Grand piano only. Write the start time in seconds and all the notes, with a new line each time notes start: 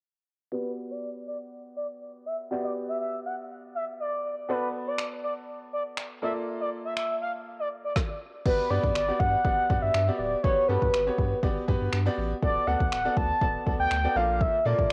0.52 B3 F#4 G4 D5
2.51 B3 F#4 G4 D5
4.49 B3 F#4 A4 D5
6.22 A#3 F4 A4 D5
8.46 B3 F#4 G4 D5
8.70 B3 F#4 G4 B4
9.08 B3 F#4 G4 D5
9.45 B3 F#4 G4 D5
9.70 B3 F#4 G4 D5
10.08 B3 F#4 G4 D5
10.44 B3 F#4 G4 B4
10.69 B3 F#4 G4 A4
11.07 B3 F#4 G4 C#5
11.43 B3 F#4 G4 D5
11.68 B3 F#4 G4 B4
12.06 B3 F#4 G4 D5
12.42 B3 F#4 A4 D5
12.67 B3 F#4 A4 D5
13.05 B3 F#4 A4 D5
13.41 B3 F#4 A4 D5
13.66 B3 F#4 A4 D5
14.04 B3 F#4 A4 D5
14.16 A#3 F4 A4 D5
14.65 A#3 F4 A4 D5